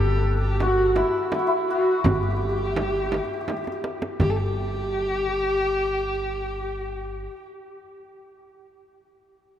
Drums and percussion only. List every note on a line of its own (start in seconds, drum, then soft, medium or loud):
0.60 tombak tek medium
0.60 frame drum medium
0.96 tombak tek medium
0.96 frame drum medium
1.32 tombak tek medium
1.32 frame drum medium
2.04 frame drum loud
2.04 tombak dum loud
2.42 tombak ka soft
2.76 tombak tek medium
2.76 frame drum medium
3.12 tombak tek medium
3.12 frame drum medium
3.48 tombak tek medium
3.48 frame drum medium
3.67 tombak ka medium
3.84 tombak tek medium
4.02 tombak ka medium
4.20 tombak dum medium
4.20 frame drum medium